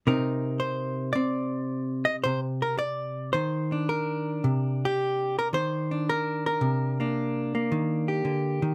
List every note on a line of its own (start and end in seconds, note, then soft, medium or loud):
0.07 2.25 C3 medium
0.07 1.15 C4 soft
0.07 2.82 D#4 soft
0.07 1.15 A#4 medium
0.60 1.12 C5 medium
1.13 2.65 C4 medium
1.13 2.05 D5 medium
2.05 2.16 D#5 medium
2.24 3.34 C3 medium
2.24 2.40 C5 medium
2.62 2.78 A#4 medium
2.79 3.32 D5 medium
3.33 4.41 D#3 medium
3.33 3.88 C5 medium
3.72 5.90 D4 soft
3.89 4.81 A#4 medium
4.44 5.52 C3 medium
4.85 5.37 G4 medium
5.39 5.48 A#4 medium
5.53 6.59 D#3 medium
5.53 6.07 C5 medium
5.91 6.99 D4 soft
6.09 6.45 A#4 medium
6.46 8.08 A#4 medium
6.61 7.70 C3 medium
7.00 7.54 A#3 soft
7.00 8.74 D4 soft
7.55 8.74 A#3 soft
7.72 8.24 D#3 medium
8.08 8.74 G4 soft
8.25 8.62 D3 soft
8.62 8.74 D#3 medium